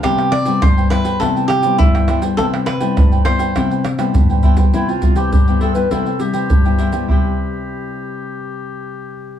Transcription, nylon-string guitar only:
\new Staff \with { instrumentName = "Nylon-string guitar" } { \time 4/4 \key c \major \tempo 4 = 102 << { <g b e'>8 r16 <g b e'>8. <g b e'>8 <g b e'>8. <g b e'>8. <g b e'>8 | <g b e'>8 r16 <g b e'>8. <g b e'>8 <g b e'>8 r16 <g b e'>8. <g b e'>8 | <g b e'>16 r16 <g b e'>8 r16 <g b e'>8 <g b e'>16 <g b e'>16 r16 <g b e'>8 r16 <g b e'>8 <g b e'>16~ | <g b e'>8 r2. r8 | } \\ { c4 g,4 c4 g,4 | c4 g,4 c4 g,4 | c4 g,4 c4 g,4 | <c g e'>1 | } >> }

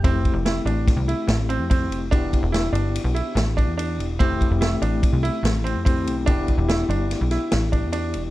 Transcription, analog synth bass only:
\new Staff \with { instrumentName = "Analog synth bass" } { \clef bass \time 5/4 \key f \lydian \tempo 4 = 144 f,,8. f,,8. a,,8. c,8 r16 a,,8. f,8. f,,8 | e,,8. e,,8. g,,8. b,,8 r16 a,,8. e,8. e,,8 | f,,8. f,,8. a,,8. c,8 r16 a,,8. f,8. b,,8 | e,,8. e,,8. g,,8. b,,8 r16 a,,8. e,8. e,,8 | }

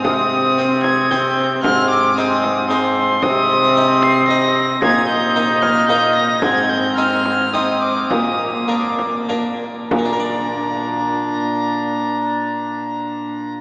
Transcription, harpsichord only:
<<
  \new Staff \with { instrumentName = "Harpsichord" } { \time 3/4 \key bes \mixolydian \tempo 4 = 111 r4 <c' c''>4 <c' c''>4 | r4 <aes ees' c''>4 <aes ees' c''>4 | r4 <ees' ees''>4 <ees' ees''>4 | r4 <bes ees' ees''>4 <bes ees' ees''>4 |
r4 <c' ees' ees''>4 <c' ees' ees''>4 | r4 <bes d' bes'>4 <bes d' bes'>4 | <bes, bes d' bes' d''>2.~ | <bes, bes d' bes' d''>2. | }
  \new Staff \with { instrumentName = "Harpsichord" } { \clef bass \time 3/4 \key bes \mixolydian c2. | aes,2. | c2. | bes,2. |
aes,2. | bes,2~ bes,8 r8 | r2. | r2. | }
>>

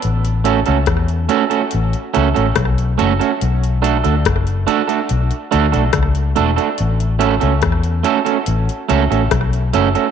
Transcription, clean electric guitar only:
\new Staff \with { instrumentName = "Clean electric guitar" } { \time 4/4 \key a \major \tempo 4 = 71 r8 <a cis' fis' a'>16 <a cis' fis' a'>16 r8 <a cis' fis' a'>16 <a cis' fis' a'>16 r8 <a cis' fis' a'>16 <a cis' fis' a'>16 r8 <a cis' fis' a'>16 <a cis' fis' a'>16 | r8 <a d' fis' a'>16 <a d' fis' a'>16 r8 <a d' fis' a'>16 <a d' fis' a'>16 r8 <a d' fis' a'>16 <a d' fis' a'>16 r8 <a d' fis' a'>16 <a d' fis' a'>16 | r8 <a cis' fis' a'>16 <a cis' fis' a'>16 r8 <a cis' fis' a'>16 <a cis' fis' a'>16 r8 <a cis' fis' a'>16 <a cis' fis' a'>16 r8 <a cis' fis' a'>16 <a cis' fis' a'>16 | }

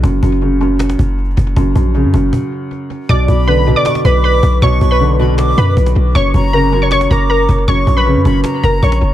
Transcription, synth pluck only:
\new Staff \with { instrumentName = "Synth pluck" } { \time 4/4 \key b \minor \tempo 4 = 157 r1 | r1 | <d'' d'''>4 <b' b''>8. <d'' d'''>16 <d'' d'''>8 <b' b''>8 <b' b''>4 | <cis'' cis'''>8. <b' b''>4~ <b' b''>16 r8 <b' b''>4. |
<cis'' cis'''>4 <ais' ais''>8. <cis'' cis'''>16 <cis'' cis'''>8 <ais' ais''>8 <ais' ais''>4 | <cis'' cis'''>8. <b' b''>4~ <b' b''>16 r8 <ais' ais''>8 <cis'' cis'''>4 | }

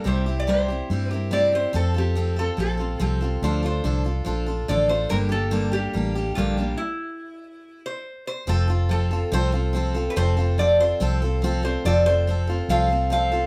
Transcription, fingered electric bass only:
\new Staff \with { instrumentName = "Fingered electric bass" } { \clef bass \time 4/4 \key f \major \tempo 4 = 142 c,2 g,2 | f,2 bes,,4 c,4 | d,4 c,4 bes,,4 a,,4 | g,,2 a,,4 bes,,4 |
r1 | f,,2 c,2 | f,,2 c,2 | f,,2 c,2 | }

